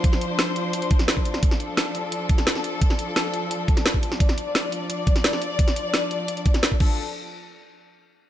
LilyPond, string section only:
\new Staff \with { instrumentName = "String section" } { \time 4/4 \key d \minor \tempo 4 = 173 << { c''1 | a'1~ | a'1 | d''1~ |
d''2.~ d''8 <f d' a'>8 | r1 | } \\ { <f d'>1~ | <f d'>1~ | <f d'>1~ | <f d'>1~ |
<f d'>2.~ <f d'>8 r8 | r1 | } >> }